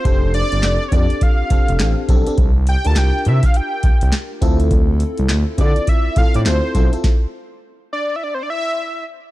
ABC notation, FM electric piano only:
X:1
M:4/4
L:1/16
Q:"Swing 16ths" 1/4=103
K:Dm
V:1 name="FM electric piano"
[CDGA]4- [CDGA] z [CDGA]4 [CDGA]2 [CDGA]2 [CDGA] [CDGA] | z3 [DFGB]6- [DFGB] z4 [CEFA]2- | [CEFA]4- [CEFA] z [CEFA]4 [CEFA]2 [CEFA]2 [CEFA] [CEFA] | z16 |]